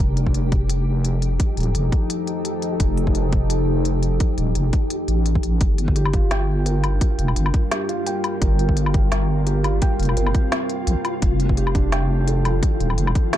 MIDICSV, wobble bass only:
0, 0, Header, 1, 2, 480
1, 0, Start_track
1, 0, Time_signature, 4, 2, 24, 8
1, 0, Tempo, 350877
1, 18296, End_track
2, 0, Start_track
2, 0, Title_t, "Wobble bass"
2, 0, Program_c, 0, 39
2, 0, Note_on_c, 0, 29, 95
2, 1898, Note_off_c, 0, 29, 0
2, 2155, Note_on_c, 0, 27, 87
2, 2377, Note_off_c, 0, 27, 0
2, 2392, Note_on_c, 0, 29, 87
2, 2616, Note_off_c, 0, 29, 0
2, 3830, Note_on_c, 0, 29, 96
2, 5738, Note_off_c, 0, 29, 0
2, 5992, Note_on_c, 0, 27, 90
2, 6216, Note_off_c, 0, 27, 0
2, 6233, Note_on_c, 0, 29, 88
2, 6456, Note_off_c, 0, 29, 0
2, 6953, Note_on_c, 0, 33, 91
2, 7659, Note_off_c, 0, 33, 0
2, 7673, Note_on_c, 0, 31, 101
2, 9580, Note_off_c, 0, 31, 0
2, 9833, Note_on_c, 0, 29, 90
2, 10056, Note_off_c, 0, 29, 0
2, 10073, Note_on_c, 0, 31, 89
2, 10296, Note_off_c, 0, 31, 0
2, 11513, Note_on_c, 0, 31, 98
2, 13420, Note_off_c, 0, 31, 0
2, 13672, Note_on_c, 0, 29, 89
2, 13895, Note_off_c, 0, 29, 0
2, 13916, Note_on_c, 0, 31, 90
2, 14138, Note_off_c, 0, 31, 0
2, 14875, Note_on_c, 0, 34, 81
2, 14995, Note_off_c, 0, 34, 0
2, 15353, Note_on_c, 0, 29, 96
2, 17260, Note_off_c, 0, 29, 0
2, 17514, Note_on_c, 0, 27, 90
2, 17737, Note_off_c, 0, 27, 0
2, 17754, Note_on_c, 0, 29, 92
2, 17976, Note_off_c, 0, 29, 0
2, 18296, End_track
0, 0, End_of_file